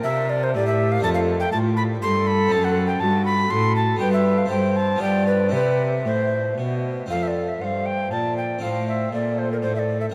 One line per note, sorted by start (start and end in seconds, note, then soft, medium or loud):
0.00 0.99 D4 medium
0.00 0.53 A#4 medium
0.00 0.99 A#4 medium
0.00 0.31 E5 loud
0.05 0.57 C3 medium
0.05 0.51 C3 medium
0.30 0.45 D5 loud
0.43 0.54 C5 medium
0.55 1.00 A2 medium
0.55 1.04 A2 medium
0.55 1.06 G4 medium
0.55 0.66 D5 loud
0.67 0.93 E5 loud
0.92 1.03 F5 loud
0.99 1.97 A3 medium
0.99 2.46 D4 medium
0.99 2.47 A4 soft
1.03 1.49 F2 medium
1.03 1.50 F2 medium
1.03 1.56 A4 medium
1.03 1.09 A5 loud
1.14 1.20 F5 medium
1.40 1.51 G5 loud
1.52 1.99 A2 medium
1.52 2.02 A2 medium
1.52 1.86 F4 medium
1.52 1.58 A5 loud
1.77 1.83 B5 loud
2.02 2.48 G2 medium
2.02 2.52 G2 medium
2.02 2.78 A4 loud
2.02 2.29 C6 loud
2.27 2.54 B5 loud
2.48 2.97 F#2 medium
2.48 2.98 C4 medium
2.48 3.95 D#4 soft
2.48 3.96 A4 medium
2.52 3.01 F#2 medium
2.52 2.66 A5 loud
2.64 2.87 F#5 loud
2.87 3.02 G5 loud
3.00 3.47 G2 medium
3.00 3.50 G2 medium
3.00 3.50 F#4 medium
3.00 3.25 A5 loud
3.25 3.52 B5 loud
3.50 3.96 A2 medium
3.50 4.00 A2 medium
3.50 4.00 A4 medium
3.50 3.75 C6 loud
3.76 3.99 A5 loud
3.96 4.46 B3 soft
3.96 4.47 D4 soft
3.96 4.48 G4 medium
3.96 4.12 G5 loud
4.00 4.49 G2 medium
4.00 4.46 G2 medium
4.00 4.49 B4 medium
4.13 4.40 E5 medium
4.38 4.50 F5 medium
4.46 4.97 C4 medium
4.46 4.98 E4 medium
4.46 4.98 G4 medium
4.46 5.02 C5 medium
4.50 4.99 G2 medium
4.50 4.97 G2 medium
4.50 4.78 G5 loud
4.77 5.02 A5 loud
4.96 5.54 G2 medium
4.96 5.49 B3 medium
4.96 5.50 F4 medium
4.96 5.51 G4 medium
5.00 5.49 G2 medium
5.00 5.53 D5 medium
5.00 5.26 G5 loud
5.27 5.53 B4 medium
5.49 6.06 C3 medium
5.49 7.04 C4 soft
5.49 7.05 E4 soft
5.49 7.06 G4 soft
5.49 6.84 E5 medium
5.53 6.02 C3 medium
5.53 5.83 B4 loud
6.05 6.57 A2 medium
6.05 6.54 A2 medium
6.05 6.55 C5 medium
6.57 7.09 B2 medium
6.57 7.06 B2 medium
7.06 7.57 F2 soft
7.06 7.58 C4 soft
7.06 8.57 F4 soft
7.06 8.58 A4 soft
7.06 7.63 A4 medium
7.10 7.58 F2 soft
7.10 7.24 F5 medium
7.23 7.29 E5 medium
7.28 7.50 D5 medium
7.48 7.63 E5 medium
7.60 8.10 G2 soft
7.60 8.08 G2 soft
7.60 8.15 C5 medium
7.60 7.65 F#5 medium
7.64 7.87 F5 medium
7.86 8.11 G5 medium
8.10 8.61 A#2 medium
8.10 8.58 A#2 soft
8.10 8.63 D5 medium
8.10 8.37 A5 medium
8.37 8.64 G5 medium
8.58 9.11 A2 medium
8.58 10.06 C4 soft
8.58 10.07 F4 soft
8.58 10.08 A4 soft
8.63 9.09 A2 soft
8.63 9.12 C5 medium
8.63 8.88 F5 medium
8.88 9.12 E5 medium
9.13 9.64 A#2 medium
9.13 9.59 A#2 soft
9.13 10.14 A4 medium
9.13 9.40 D5 medium
9.39 9.51 C5 medium
9.52 9.57 A#4 medium
9.62 10.12 A2 medium
9.62 10.08 A2 soft
9.62 9.75 C5 medium
9.76 10.00 D5 medium
9.76 9.80 E5 medium
10.01 10.06 E5 medium
10.10 10.14 D4 soft
10.10 10.14 A#4 soft